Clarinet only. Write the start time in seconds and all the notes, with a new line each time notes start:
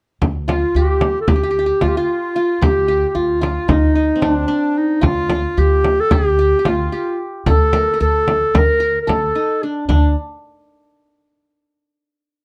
0.49 F4
0.76 G4
1.21 A4
1.29 G4
1.83 F4
1.88 G4
1.97 F4
2.64 G4
3.09 G4
3.17 F4
3.69 D#4
4.22 D4
4.78 D#4
5.06 F4
5.59 G4
6.00 A4
6.13 G4
6.68 F4
7.50 A4
8.02 A4
8.58 A#4
9.01 A#4
9.11 A4
9.63 D4
9.87 D4